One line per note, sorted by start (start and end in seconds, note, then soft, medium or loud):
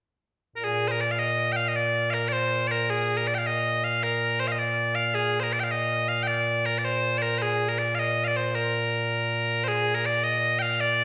0.56 11.04 A#2 medium
0.56 0.64 A#4 medium
0.64 0.88 G#4 loud
0.88 1.01 A#4 medium
0.88 0.91 C5 medium
1.01 1.11 D5 medium
1.11 1.19 F5 medium
1.19 1.52 D#5 loud
1.52 1.57 G5 loud
1.57 1.68 F5 loud
1.68 1.76 D#5 medium
1.76 2.10 D5 loud
2.10 2.29 A#4 medium
2.10 2.14 F5 medium
2.28 2.32 D5 loud
2.32 2.67 C5 loud
2.67 2.90 A#4 medium
2.67 2.71 D5 medium
2.90 3.17 G#4 loud
3.17 3.27 A#4 medium
3.27 3.35 D5 medium
3.35 3.46 F5 medium
3.35 3.38 G5 medium
3.46 3.84 D#5 medium
3.84 4.03 F5 medium
4.03 4.40 A#4 medium
4.40 4.47 C5 loud
4.47 4.52 F5 medium
4.52 4.59 D#5 medium
4.59 4.95 D5 medium
4.95 5.14 F5 loud
5.14 5.40 G#4 medium
5.40 5.53 A#4 medium
5.40 5.43 C5 medium
5.53 5.60 D5 loud
5.60 5.64 G5 medium
5.64 5.71 F5 medium
5.71 6.08 D#5 loud
6.08 6.23 F5 medium
6.23 6.27 G5 medium
6.27 6.66 D5 medium
6.66 6.78 A#4 medium
6.78 6.85 D5 medium
6.85 7.18 C5 medium
7.18 7.22 D5 medium
7.22 7.38 A#4 medium
7.38 7.69 G#4 medium
7.38 7.42 C5 medium
7.69 7.79 A#4 medium
7.79 7.95 D5 medium
7.95 7.99 F5 medium
7.99 8.24 D#5 medium
8.24 8.36 D5 medium
8.24 8.27 F5 medium
8.36 8.55 C5 medium
8.55 9.64 A#4 medium
9.64 9.68 C5 loud
9.68 9.95 G#4 loud
9.95 10.06 A#4 medium
10.06 10.23 D5 loud
10.23 10.59 D#5 loud
10.59 10.80 F5 loud
10.59 10.62 G5 loud
10.80 11.04 D5 loud